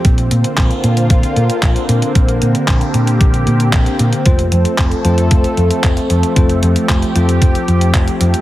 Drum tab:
HH |xxxxxxxxxxxxxxxx|xxxxxxxxxxxxxxxx|xxxxxxxxxxxxxxxx|xxxxxxxxxxxxxxxx|
CP |----x-------x---|----x-------x---|----x-------x---|----x-------x---|
BD |o---o---o---o---|o---o---o---o---|o---o---o---o---|o---o---o---o---|